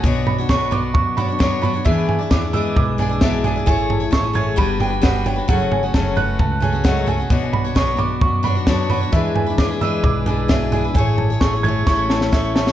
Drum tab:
SD |----o-------o---|----o-------o---|----o-------o---|----o-------o---|
FT |o-o-o-o-o-o-o-o-|o-o-o-o-o-o-o-o-|o-o-o-o-o-o-o-o-|o-o-o-o-o-o-o-o-|
BD |o---o---o---o---|o---o---o---o---|o---o---o---o---|o---o---o---o---|

SD |----o-------o---|----o-------o---|----o---o-ooo-oo|
FT |o-o-o-o-o-o-o-o-|o-o-o-o-o-o-o-o-|o-o-o-o---------|
BD |o---o---o---o---|o---o---o---o---|o---o---o---o---|